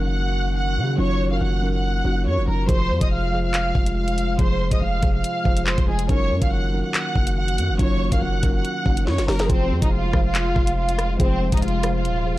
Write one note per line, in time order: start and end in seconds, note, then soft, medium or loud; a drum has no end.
0.00 0.79 F#1 loud
0.00 2.65 D#3 medium
0.00 0.97 F#3 medium
0.00 2.65 A#3 medium
0.00 0.98 C#4 medium
0.00 0.99 D#4 medium
0.00 2.65 F#4 medium
0.00 1.32 A#4 loud
0.00 0.53 F#5 medium
0.04 0.53 F#6 medium
0.56 0.96 F#5 medium
0.56 0.96 F#6 medium
0.77 0.97 C#3 loud
0.97 1.39 F#1 loud
0.97 1.20 F#3 loud
0.97 1.21 C#4 medium
0.97 1.21 D#4 medium
0.97 1.21 F4 loud
0.97 1.29 C#5 medium
0.97 1.30 C#6 medium
1.30 1.53 F#3 medium
1.30 1.53 C#4 medium
1.30 1.54 D#4 medium
1.30 1.54 A#4 medium
1.30 1.40 F5 medium
1.30 1.40 F6 medium
1.41 2.02 F#1 loud
1.41 1.72 F#5 medium
1.41 1.72 F#6 medium
1.61 1.92 F#3 medium
1.61 1.92 C#4 medium
1.61 1.93 D#4 medium
1.61 1.93 A#4 medium
1.74 2.23 F#5 medium
1.74 2.24 F#6 medium
2.03 2.28 F#1 loud
2.03 2.34 F#3 medium
2.03 2.35 C#4 medium
2.03 2.35 D#4 medium
2.03 2.35 F#4 medium
2.26 2.39 F#2 loud
2.26 2.45 C#5 medium
2.26 2.46 C#6 medium
2.37 2.47 F#1 loud
2.47 2.68 F#1 loud
2.47 2.62 F#3 medium
2.47 2.63 C#4 medium
2.47 2.63 D#4 medium
2.47 2.67 A#4 medium
2.47 2.63 A#4 medium
2.47 2.67 A#5 medium
2.67 2.92 F1 loud
2.67 6.06 C3 medium
2.67 3.12 F3 medium
2.67 6.06 G#3 medium
2.67 3.13 F4 medium
2.67 6.06 F4 medium
2.67 3.13 G#4 medium
2.67 2.99 C5 loud
2.67 3.13 C5 loud
2.67 3.00 C6 medium
2.67 kick loud
2.67 closed hi-hat medium
2.90 3.01 F2 loud
3.01 3.72 F1 loud
3.01 3.10 D#5 medium
3.01 3.11 D#6 medium
3.01 kick medium
3.01 closed hi-hat medium
3.11 3.42 F5 medium
3.11 3.42 F6 medium
3.32 3.92 F3 medium
3.32 3.92 F4 medium
3.32 3.93 G#4 medium
3.32 3.93 C5 medium
3.44 3.93 F5 medium
3.44 3.94 F6 medium
3.54 clap loud
3.54 closed hi-hat medium
3.75 4.36 F1 loud
3.75 kick loud
3.86 closed hi-hat medium
3.96 4.36 F5 medium
3.96 4.37 F6 medium
4.08 closed hi-hat medium
4.18 closed hi-hat medium
4.38 4.70 F1 loud
4.38 4.61 F3 loud
4.38 4.61 F4 medium
4.38 4.61 G#4 medium
4.38 4.70 C5 medium
4.38 4.62 C5 loud
4.38 4.70 C6 medium
4.38 kick loud
4.38 closed hi-hat medium
4.70 4.81 F1 loud
4.70 4.93 F3 medium
4.70 4.93 F4 medium
4.70 4.94 G#4 medium
4.70 4.94 C5 medium
4.70 4.80 D#5 medium
4.70 4.81 D#6 medium
4.70 kick medium
4.70 closed hi-hat medium
4.81 5.02 F1 loud
4.81 5.12 F5 medium
4.81 5.13 F6 medium
5.01 5.23 F1 loud
5.01 5.32 F3 medium
5.01 5.33 F4 medium
5.01 5.33 G#4 medium
5.01 5.33 C5 medium
5.01 kick loud
5.01 closed hi-hat medium
5.14 5.63 F5 medium
5.14 5.64 F6 medium
5.24 closed hi-hat medium
5.43 5.77 F1 loud
5.43 5.74 F3 medium
5.43 5.75 F4 medium
5.43 5.75 G#4 medium
5.43 5.76 C5 medium
5.43 kick loud
5.57 closed hi-hat medium
5.66 5.86 C5 medium
5.66 5.86 C6 medium
5.66 clap loud
5.78 5.87 F1 loud
5.78 kick loud
5.78 closed hi-hat medium
5.87 6.08 F1 loud
5.87 6.03 F3 medium
5.87 6.03 F4 medium
5.87 6.07 G#4 medium
5.87 6.04 G#4 medium
5.87 6.04 D#5 medium
5.87 6.08 G#5 medium
5.99 closed hi-hat medium
6.08 6.32 F#1 loud
6.08 9.46 D#3 medium
6.08 6.53 F#3 medium
6.08 9.46 A#3 medium
6.08 6.54 C#4 medium
6.08 6.54 D#4 medium
6.08 9.46 F#4 medium
6.08 6.54 A#4 loud
6.08 6.40 C#5 loud
6.08 6.40 C#6 medium
6.08 kick loud
6.08 closed hi-hat medium
6.30 6.41 F#2 loud
6.42 6.83 F#1 loud
6.42 6.51 F5 medium
6.42 6.51 F6 medium
6.42 kick medium
6.42 closed hi-hat medium
6.52 6.82 F#5 medium
6.52 6.83 F#6 medium
6.71 7.32 F#3 medium
6.71 7.32 C#4 medium
6.71 7.32 D#4 medium
6.71 7.33 A#4 medium
6.85 7.34 F#5 medium
6.85 7.34 F#6 medium
6.94 clap loud
6.94 closed hi-hat medium
7.16 7.60 F#1 loud
7.16 kick loud
7.27 closed hi-hat medium
7.37 7.77 F#5 medium
7.37 7.77 F#6 medium
7.48 closed hi-hat medium
7.58 7.71 F#2 loud
7.58 closed hi-hat medium
7.69 7.79 F#1 loud
7.78 8.11 F#1 loud
7.78 8.01 F#3 loud
7.78 8.01 C#4 medium
7.78 8.02 D#4 medium
7.78 8.02 F4 loud
7.78 8.10 C#5 loud
7.78 8.11 C#6 medium
7.78 kick loud
7.78 closed hi-hat medium
8.11 8.21 F#1 loud
8.11 8.34 F#3 medium
8.11 8.34 C#4 medium
8.11 8.34 D#4 medium
8.11 8.35 A#4 medium
8.11 8.21 F5 medium
8.11 8.21 F6 medium
8.11 kick medium
8.11 closed hi-hat medium
8.22 8.42 F#1 loud
8.22 8.52 F#5 medium
8.22 8.53 F#6 medium
8.42 8.64 F#1 loud
8.42 8.73 F#3 medium
8.42 8.73 C#4 medium
8.42 8.74 D#4 medium
8.42 8.74 A#4 medium
8.42 kick loud
8.42 closed hi-hat medium
8.55 9.04 F#5 medium
8.55 9.04 F#6 medium
8.65 closed hi-hat medium
8.84 9.09 F#1 loud
8.84 9.15 F#3 medium
8.84 9.15 C#4 medium
8.84 9.16 D#4 medium
8.84 9.16 F#4 medium
8.84 kick loud
8.97 closed hi-hat medium
9.07 9.20 F#2 loud
9.07 9.26 C#5 medium
9.07 9.27 C#6 medium
9.07 snare medium
9.18 9.28 F#1 loud
9.18 snare medium
9.18 closed hi-hat medium
9.27 9.49 F#1 loud
9.27 9.43 F#3 medium
9.27 9.43 C#4 medium
9.27 9.44 D#4 medium
9.27 9.47 A#4 medium
9.27 9.44 A#4 medium
9.27 9.48 A#5 medium
9.27 snare medium
9.27 open hi-hat medium
9.39 snare loud
9.39 closed hi-hat medium
9.48 9.72 F1 loud
9.48 12.38 C3 medium
9.48 9.93 F3 medium
9.48 12.38 G#3 medium
9.48 9.80 C4 loud
9.48 9.94 F4 medium
9.48 12.38 F4 medium
9.48 9.94 G#4 medium
9.48 9.94 C5 loud
9.48 9.81 C5 medium
9.48 kick loud
9.48 closed hi-hat medium
9.71 9.82 F2 loud
9.82 10.12 F1 loud
9.82 9.91 D#4 medium
9.82 9.92 D#5 medium
9.82 kick loud
9.82 closed hi-hat medium
9.92 10.23 F4 medium
9.92 10.23 F5 medium
10.13 10.54 F1 loud
10.13 10.73 F3 medium
10.13 10.73 F4 medium
10.13 10.73 G#4 medium
10.13 10.74 C5 medium
10.13 kick loud
10.13 cross-stick medium
10.25 10.74 F4 medium
10.25 10.75 F5 medium
10.35 clap loud
10.35 closed hi-hat medium
10.56 11.17 F1 loud
10.56 kick loud
10.67 closed hi-hat medium
10.77 11.17 F4 medium
10.77 11.18 F5 medium
10.89 closed hi-hat medium
10.99 cross-stick medium
10.99 closed hi-hat medium
11.19 11.51 F1 loud
11.19 11.41 F3 loud
11.19 11.51 C4 loud
11.19 11.42 F4 medium
11.19 11.42 G#4 medium
11.19 11.51 C5 medium
11.19 11.43 C5 loud
11.19 kick loud
11.19 closed hi-hat medium
11.51 11.62 F1 loud
11.51 11.74 F3 medium
11.51 11.61 D#4 medium
11.51 11.74 F4 medium
11.51 11.75 G#4 medium
11.51 11.75 C5 medium
11.51 11.62 D#5 medium
11.51 kick medium
11.51 closed hi-hat medium
11.57 closed hi-hat medium
11.62 12.06 F1 loud
11.62 11.93 F4 medium
11.62 11.93 F5 medium
11.62 closed hi-hat medium
11.68 closed hi-hat soft
11.82 12.13 F3 medium
11.82 12.13 F4 medium
11.82 12.14 G#4 medium
11.82 12.14 C5 medium
11.82 cross-stick medium
11.82 closed hi-hat medium
11.95 12.38 F4 medium
11.95 12.38 F5 medium
12.05 12.33 D#1 loud
12.05 closed hi-hat medium
12.24 12.38 F3 medium
12.24 12.38 F4 medium
12.24 12.38 G#4 medium
12.24 12.38 C5 medium
12.32 12.38 F1 loud